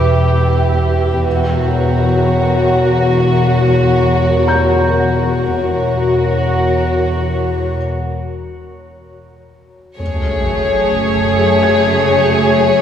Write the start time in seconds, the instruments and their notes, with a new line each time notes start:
Already playing: double bass section E1, cello section E2, violin section G4 B5 D6, ambient pad B4 E5 G5
1.24 double bass section E1, cello section E2, violin section F#4, ambient pad F#4 A#4 C#5
4.48 felt piano A#5 G6
5.55 double bass section E1, cello section E2, ambient pad F#4 A#4 C#5, violin section F#4
9.98 double bass section F#1, cello section F#2, viola section A3, ambient pad G#4 C#5 G#5, violin section G#4 C#5, sub drop
11.63 felt piano G#6